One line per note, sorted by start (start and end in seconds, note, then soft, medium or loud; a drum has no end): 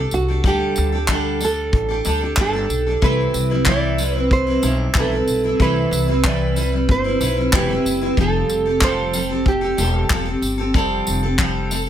0.00 0.29 D4 soft
0.00 0.28 G4 soft
0.00 0.14 A4 medium
0.00 0.27 A4 medium
0.11 0.39 C2 medium
0.11 0.46 F#4 medium
0.11 tambourine medium
0.28 0.44 D4 soft
0.28 0.45 G4 soft
0.28 0.44 A4 soft
0.44 0.71 D2 medium
0.44 0.93 D3 medium
0.44 0.93 G3 medium
0.44 0.93 D4 medium
0.44 0.93 G4 medium
0.44 1.44 G4 medium
0.44 0.91 A4 medium
0.44 kick loud
0.76 1.70 D2 loud
0.76 tambourine medium
0.92 1.09 D4 soft
0.92 1.09 G4 soft
0.92 1.09 A4 soft
1.08 1.41 D3 medium
1.08 1.40 G3 medium
1.08 1.40 D4 medium
1.08 1.41 G4 medium
1.08 1.42 A4 medium
1.08 kick medium
1.08 clap loud
1.41 1.89 G3 medium
1.41 1.89 D4 medium
1.41 1.89 G4 medium
1.41 1.87 A4 medium
1.41 2.40 A4 medium
1.41 tambourine medium
1.73 1.99 A1 medium
1.73 kick loud
1.89 2.04 D4 soft
1.89 2.05 G4 soft
1.89 2.05 A4 soft
2.05 2.32 D2 loud
2.05 2.21 G3 medium
2.05 2.21 D4 medium
2.05 2.21 G4 medium
2.05 2.20 A4 medium
2.05 tambourine medium
2.21 2.37 D4 soft
2.21 2.37 G4 soft
2.21 2.37 A4 soft
2.37 2.64 G1 loud
2.37 2.54 D3 medium
2.37 2.54 G3 medium
2.37 2.54 D4 medium
2.37 2.53 G4 medium
2.37 2.52 A4 medium
2.37 kick loud
2.37 clap loud
2.41 3.04 A4 medium
2.53 2.87 D4 soft
2.53 2.86 G4 soft
2.53 2.85 A4 medium
2.69 2.96 B1 medium
2.69 tambourine medium
2.86 3.02 D4 soft
2.86 3.02 G4 soft
2.86 3.02 A4 soft
3.02 3.29 C2 medium
3.02 3.50 C3 medium
3.02 3.50 E3 medium
3.02 3.50 G3 medium
3.02 3.50 C4 medium
3.02 3.50 E4 medium
3.02 3.49 B4 medium
3.02 3.63 B4 medium
3.02 kick loud
3.34 4.59 C2 medium
3.34 tambourine medium
3.50 3.66 G3 soft
3.50 3.66 C4 soft
3.50 3.67 E4 soft
3.50 3.66 B4 soft
3.66 3.98 C3 medium
3.66 3.99 E3 medium
3.66 3.98 G3 medium
3.66 3.99 C4 medium
3.66 3.99 E4 medium
3.66 3.99 B4 medium
3.66 4.19 D5 medium
3.66 kick medium
3.66 clap medium
3.98 4.15 G3 soft
3.98 4.15 C4 medium
3.98 4.14 E4 medium
3.98 4.14 B4 medium
3.98 tambourine medium
4.15 4.48 G3 soft
4.15 4.47 C4 soft
4.15 4.47 E4 soft
4.15 4.45 B4 soft
4.15 4.32 C5 medium
4.31 4.98 C5 medium
4.31 kick medium
4.47 4.61 G3 soft
4.47 4.62 C4 soft
4.47 4.63 E4 soft
4.47 4.63 B4 medium
4.62 4.89 B1 medium
4.62 4.94 G3 medium
4.62 4.95 C4 medium
4.62 4.95 E4 medium
4.62 tambourine medium
4.95 5.22 B1 loud
4.95 5.11 C3 medium
4.95 5.11 E3 medium
4.95 5.11 G3 medium
4.95 5.12 C4 medium
4.95 5.11 E4 medium
4.95 5.10 B4 medium
4.95 kick loud
4.95 clap loud
4.99 5.64 A4 medium
5.12 5.45 G3 soft
5.12 5.44 C4 soft
5.12 5.43 E4 medium
5.12 5.42 B4 soft
5.27 5.54 B1 medium
5.27 tambourine medium
5.44 5.59 G3 soft
5.44 5.59 C4 soft
5.44 5.60 E4 soft
5.44 5.60 B4 medium
5.60 5.86 C2 loud
5.60 6.08 C3 medium
5.60 6.08 E3 medium
5.60 6.08 G3 medium
5.60 6.08 C4 medium
5.60 6.07 E4 medium
5.60 6.07 B4 medium
5.60 6.26 B4 medium
5.60 kick loud
5.91 6.84 C2 loud
5.91 tambourine medium
6.08 6.23 G3 soft
6.08 6.24 C4 soft
6.08 6.24 E4 soft
6.08 6.24 B4 soft
6.24 6.56 C3 medium
6.24 6.57 E3 medium
6.24 6.54 G3 medium
6.24 6.56 C4 medium
6.24 6.56 E4 medium
6.24 6.57 B4 medium
6.24 6.91 D5 medium
6.24 kick loud
6.24 clap loud
6.56 6.72 G3 medium
6.56 6.72 C4 medium
6.56 6.71 E4 medium
6.56 6.71 B4 medium
6.56 tambourine medium
6.72 7.05 G3 soft
6.72 7.05 C4 soft
6.72 7.04 E4 soft
6.72 7.03 B4 soft
6.89 7.15 G1 loud
6.89 7.56 C5 medium
6.89 kick loud
7.04 7.19 G3 soft
7.04 7.20 C4 soft
7.04 7.21 E4 soft
7.04 7.20 B4 medium
7.20 7.47 B1 medium
7.20 7.37 G3 medium
7.20 7.37 C4 medium
7.20 7.36 E4 medium
7.20 7.35 B4 medium
7.20 tambourine medium
7.37 7.52 G3 soft
7.37 7.52 C4 soft
7.37 7.53 E4 soft
7.37 7.53 B4 soft
7.52 7.79 E1 medium
7.52 7.69 C3 medium
7.52 7.69 E3 medium
7.52 7.69 G3 medium
7.52 7.69 C4 medium
7.52 7.68 E4 medium
7.52 8.20 G4 medium
7.52 7.67 B4 medium
7.52 kick loud
7.52 clap loud
7.69 8.02 G3 soft
7.69 8.02 C4 soft
7.69 8.01 E4 medium
7.69 8.00 B4 medium
7.85 8.11 F#1 medium
7.85 tambourine medium
8.01 8.17 G3 soft
8.01 8.17 C4 soft
8.01 8.18 E4 medium
8.01 8.17 B4 soft
8.17 8.44 F1 loud
8.17 8.66 F3 medium
8.17 8.66 G3 medium
8.17 8.66 C4 medium
8.17 8.65 G4 medium
8.17 8.64 A4 medium
8.17 8.85 A4 medium
8.17 kick loud
8.49 9.74 F1 medium
8.49 tambourine medium
8.66 8.81 C4 soft
8.66 8.82 G4 soft
8.66 8.82 A4 soft
8.81 9.14 F3 medium
8.81 9.12 G3 medium
8.81 9.13 C4 medium
8.81 9.14 G4 medium
8.81 9.14 A4 medium
8.81 9.49 C5 medium
8.81 kick loud
8.81 clap medium
9.13 9.30 G3 medium
9.13 9.30 C4 medium
9.13 9.30 G4 medium
9.13 9.28 A4 medium
9.13 tambourine medium
9.29 9.62 C4 soft
9.29 9.61 G4 soft
9.29 9.60 A4 soft
9.46 11.89 G4 medium
9.46 kick medium
9.61 9.77 C4 soft
9.61 9.78 G4 soft
9.61 9.78 A4 medium
9.77 10.04 E1 loud
9.77 10.08 G3 medium
9.77 10.09 C4 medium
9.77 10.09 G4 medium
9.77 10.09 A4 medium
9.77 tambourine medium
10.09 10.37 E1 medium
10.09 10.26 F3 medium
10.09 10.26 G3 medium
10.09 10.26 C4 medium
10.09 10.25 G4 medium
10.09 10.24 A4 medium
10.09 kick loud
10.09 clap loud
10.25 10.59 C4 soft
10.25 10.58 G4 medium
10.25 10.57 A4 medium
10.42 10.74 G1 medium
10.42 tambourine medium
10.58 10.74 C4 soft
10.58 10.74 G4 medium
10.58 10.74 A4 medium
10.74 11.01 F1 loud
10.74 11.23 F3 medium
10.74 11.23 G3 medium
10.74 11.23 C4 medium
10.74 11.22 G4 medium
10.74 11.22 A4 loud
10.74 kick loud
11.07 11.89 F1 medium
11.07 tambourine medium
11.23 11.38 C4 soft
11.23 11.38 G4 medium
11.23 11.38 A4 medium
11.38 11.70 F3 medium
11.38 11.70 G3 medium
11.38 11.70 C4 medium
11.38 11.71 G4 loud
11.38 11.71 A4 medium
11.38 kick loud
11.38 clap medium
11.71 11.87 G3 medium
11.71 11.87 C4 medium
11.71 11.86 G4 medium
11.71 11.86 A4 medium
11.71 tambourine medium